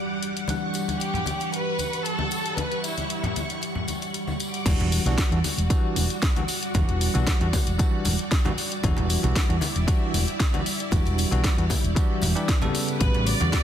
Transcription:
Already playing: E1 E3 G3 D4 F#5 D6
0.23 closed hi-hat
0.37 closed hi-hat
0.48 E3 G3 D4 F#5 C#6, closed hi-hat, tambourine, high conga
0.74 closed hi-hat, tambourine
0.88 closed hi-hat, tambourine, high conga
1.00 G4, closed hi-hat, tambourine
1.14 closed hi-hat, low conga
1.26 closed hi-hat, tambourine, high conga
1.40 closed hi-hat, tambourine
1.52 B4, closed hi-hat, tambourine
1.79 closed hi-hat, tambourine, high conga
1.93 closed hi-hat, tambourine
2.05 A4, closed hi-hat, tambourine
2.19 high conga
2.31 closed hi-hat, tambourine
2.45 closed hi-hat, tambourine
2.57 B4, closed hi-hat, tambourine, high conga
2.72 closed hi-hat
2.84 E4, closed hi-hat, tambourine
2.98 closed hi-hat, tambourine, high conga
3.10 closed hi-hat, tambourine
3.23 closed hi-hat, low conga
3.36 closed hi-hat, tambourine, high conga
3.49 closed hi-hat, tambourine
3.62 closed hi-hat, tambourine
3.75 low conga
3.88 closed hi-hat, tambourine, high conga
4.02 closed hi-hat, tambourine
4.14 closed hi-hat, tambourine
4.27 tambourine, high conga
4.40 F#5 D6, closed hi-hat, tambourine
4.54 closed hi-hat, tambourine
4.66 E1 E3 G3 D4 F#4 D5, kick, closed hi-hat, tambourine, crash, high conga
4.79 E1, closed hi-hat, low conga
4.92 open hi-hat, tambourine
5.05 B1 E3 G3 D4 F#4, closed hi-hat, tambourine, high conga
5.18 kick, snare, closed hi-hat, tambourine
5.31 E2 E3 G3 D4 F#4, closed hi-hat
5.44 open hi-hat, tambourine, high conga
5.57 E1, closed hi-hat, tambourine
5.70 E3 G3 D4 F#4, kick, closed hi-hat, tambourine
5.96 E1, open hi-hat, tambourine, high conga
6.10 closed hi-hat, tambourine
6.22 kick, snare, closed hi-hat, tambourine
6.36 E3 G3 D4 F#4, closed hi-hat, high conga
6.48 open hi-hat, tambourine
6.63 closed hi-hat, tambourine
6.74 E1 E3 G3 D4 F#4, kick, closed hi-hat, tambourine, high conga
6.89 E1, closed hi-hat
7.01 open hi-hat, tambourine
7.14 B1 E3 G3 D4 F#4, closed hi-hat, tambourine, high conga
7.26 kick, snare, closed hi-hat, tambourine
7.40 E2 E3 G3 D4 F#4, closed hi-hat
7.53 muted fingered electric bass stroke, kick, open hi-hat, tambourine, high conga
7.67 E1, closed hi-hat, tambourine
7.78 E3 G3 D4 F#4, kick, closed hi-hat, tambourine
8.05 E1, open hi-hat, tambourine, high conga, low conga
8.19 closed hi-hat, tambourine
8.31 kick, snare, closed hi-hat, tambourine
8.45 E3 G3 D4 F#4, closed hi-hat, high conga, low conga
8.58 open hi-hat, tambourine
8.71 closed hi-hat, tambourine
8.83 E1 E3 G3 D4 E4 F#4, kick, closed hi-hat, tambourine, high conga
8.97 E1, closed hi-hat, low conga
9.10 open hi-hat, tambourine
9.23 B1 E3 G3 D4 F#4, closed hi-hat, tambourine, high conga
9.36 kick, snare, closed hi-hat, tambourine
9.49 E2 E3 G3 D4 F#4, closed hi-hat
9.61 open hi-hat, tambourine, high conga
9.75 E1, closed hi-hat, tambourine
9.87 E3 G3 D4 F#4, kick, closed hi-hat, tambourine
10.14 E1, open hi-hat, tambourine, high conga
10.27 closed hi-hat, tambourine
10.40 kick, snare, closed hi-hat, tambourine
10.53 E3 G3 D4 F#4, closed hi-hat, high conga
10.66 open hi-hat, tambourine
10.79 closed hi-hat, tambourine
10.91 E1 E3 G3 D4 F#4, kick, closed hi-hat, tambourine, high conga
11.05 E1, closed hi-hat, tambourine
11.18 open hi-hat, tambourine
11.31 B1 E3 G3 D4 F#4, closed hi-hat, tambourine, high conga
11.44 kick, snare, closed hi-hat, tambourine
11.57 E2 E3 G3 D4 F#4, closed hi-hat
11.70 muted fingered electric bass stroke, kick, open hi-hat, tambourine, high conga
11.83 E1, closed hi-hat, tambourine
11.95 E3 G3 D4 F#4, kick, closed hi-hat, tambourine
12.22 E1, open hi-hat, tambourine, high conga, low conga
12.35 E3 G3 D4 G4, closed hi-hat, tambourine
12.49 kick, snare, closed hi-hat, tambourine
12.61 C#3 G3 B3 A4, closed hi-hat, high conga, low conga
12.75 B3 B4 F#5, open hi-hat, tambourine
12.88 closed hi-hat, tambourine
13.00 A1 C#3 G3 B3 F#4 B4, kick, closed hi-hat, tambourine, high conga
13.14 A1, closed hi-hat, low conga
13.26 D5, open hi-hat, tambourine
13.40 E2 C#3 G3 B3 F#4, closed hi-hat, tambourine, high conga
13.52 kick, snare, closed hi-hat, tambourine

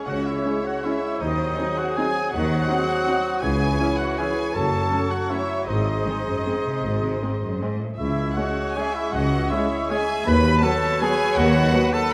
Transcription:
Already playing: G#3 C#5 C#6
0.07 C#2 C#3 F#4 C#5 F#5
0.25 E4 E5
0.45 G#3 C#4 E4
0.65 F#4 F#5
0.84 G#3 C#4 E4 C#5 E5 C#6
1.21 D#2 D#3 F#3 D#4 C5 D#5 D#6
1.59 F#3 C4 D#4 G#4
1.78 F#4 F#5
1.96 F#3 C4 D#4 G#4 G#5
2.32 D#2 D#3 F#3 F#4 C5 F#5 D#6
2.68 F#3 C4 D#4 G#4
3.06 F#3 C4 D#4 F#4
3.42 C#2 C#3 E3 E4 G#4 C#5 G#5 C#6
3.80 E3 C#4 E4
3.99 F#4 F#5
4.18 E3 C#4 E4 G#4 B4 C#5 G#5 C#6
4.54 F#1 F#2 F#3 A4 C#5 A5 C#6
4.92 F#3 A3 C#4
5.10 F#4 F#5
5.30 F#3 A3 C#4 E4 C#5 E5
5.66 G#1 G#2 G#3 D#4 G#4 C5 D#5 C6
6.05 D#3 G#3 C4
6.26 F#2
6.46 G#2 G#3 C4
6.65 C3
6.83 G#1 G#2
7.02 C3
7.21 G#2 G#3 C4
7.41 F#2
7.61 G#2 G#3 C4
7.80 A2
7.98 C#2 G#3 E4 G#4 E5 C#6
8.36 G#3 C#4 F#4 C#5 F#5
8.75 G#3 C#4 G#4 E5 G#5
8.94 E4 E5
9.13 C#2 F#4 D#5 F#5
9.50 G#3 C#4 E4 C#5 E5
9.90 G#3 C#4 G#4 E5 G#5
10.26 D#2 F#3 B4 B5
10.62 F#3 B3 A4 C#5 A5
11.01 F#3 B3 G#4 G#5
11.38 D#2 F#4 F#5
11.72 F#3 B3 B4
11.93 A4 A5

